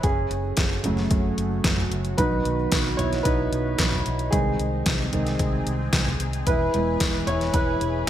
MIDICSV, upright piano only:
0, 0, Header, 1, 2, 480
1, 0, Start_track
1, 0, Tempo, 535810
1, 37, Time_signature, 4, 2, 24, 8
1, 7253, End_track
2, 0, Start_track
2, 0, Title_t, "Upright piano"
2, 0, Program_c, 0, 0
2, 0, Control_c, 0, 64, 127
2, 32, Note_on_c, 0, 68, 76
2, 46, Note_on_c, 0, 61, 58
2, 48, Control_c, 0, 64, 0
2, 223, Control_c, 0, 64, 127
2, 756, Note_on_c, 0, 49, 51
2, 763, Note_on_c, 0, 54, 52
2, 767, Note_on_c, 0, 57, 59
2, 1438, Note_off_c, 0, 68, 0
2, 1440, Note_off_c, 0, 49, 0
2, 1444, Note_off_c, 0, 54, 0
2, 1445, Note_off_c, 0, 61, 0
2, 1446, Note_off_c, 0, 57, 0
2, 1949, Note_on_c, 0, 71, 89
2, 1957, Note_on_c, 0, 51, 52
2, 1964, Note_on_c, 0, 54, 46
2, 1968, Control_c, 0, 64, 0
2, 1968, Note_on_c, 0, 63, 73
2, 1969, Note_on_c, 0, 59, 59
2, 2121, Control_c, 0, 64, 127
2, 2276, Note_off_c, 0, 51, 0
2, 2280, Note_off_c, 0, 54, 0
2, 2282, Note_off_c, 0, 59, 0
2, 2647, Note_off_c, 0, 63, 0
2, 2661, Note_on_c, 0, 73, 95
2, 2686, Note_on_c, 0, 64, 74
2, 2694, Note_off_c, 0, 71, 0
2, 2891, Note_off_c, 0, 73, 0
2, 2895, Note_on_c, 0, 71, 94
2, 2905, Note_off_c, 0, 64, 0
2, 2922, Note_on_c, 0, 63, 74
2, 3843, Note_off_c, 0, 63, 0
2, 3857, Note_on_c, 0, 68, 80
2, 3872, Note_on_c, 0, 51, 52
2, 3878, Note_on_c, 0, 56, 49
2, 3883, Note_on_c, 0, 60, 60
2, 3888, Control_c, 0, 64, 0
2, 3895, Note_off_c, 0, 71, 0
2, 4031, Control_c, 0, 64, 127
2, 4558, Note_off_c, 0, 51, 0
2, 4561, Note_off_c, 0, 56, 0
2, 4592, Note_off_c, 0, 60, 0
2, 4596, Note_on_c, 0, 51, 48
2, 4600, Note_on_c, 0, 56, 42
2, 4605, Note_on_c, 0, 60, 52
2, 4812, Note_off_c, 0, 51, 0
2, 4814, Note_off_c, 0, 56, 0
2, 4817, Note_off_c, 0, 60, 0
2, 5271, Note_off_c, 0, 68, 0
2, 5795, Note_on_c, 0, 71, 91
2, 5806, Control_c, 0, 64, 0
2, 5808, Note_on_c, 0, 64, 70
2, 5990, Control_c, 0, 64, 127
2, 6034, Note_on_c, 0, 52, 51
2, 6038, Note_on_c, 0, 56, 52
2, 6045, Note_on_c, 0, 59, 53
2, 6354, Note_off_c, 0, 52, 0
2, 6356, Note_off_c, 0, 56, 0
2, 6360, Note_off_c, 0, 59, 0
2, 6486, Note_off_c, 0, 64, 0
2, 6512, Note_on_c, 0, 73, 98
2, 6530, Note_on_c, 0, 64, 71
2, 6537, Note_off_c, 0, 71, 0
2, 6746, Note_off_c, 0, 64, 0
2, 6754, Note_on_c, 0, 71, 96
2, 6761, Note_off_c, 0, 73, 0
2, 6767, Note_on_c, 0, 64, 73
2, 7253, Note_off_c, 0, 64, 0
2, 7253, Note_off_c, 0, 71, 0
2, 7253, End_track
0, 0, End_of_file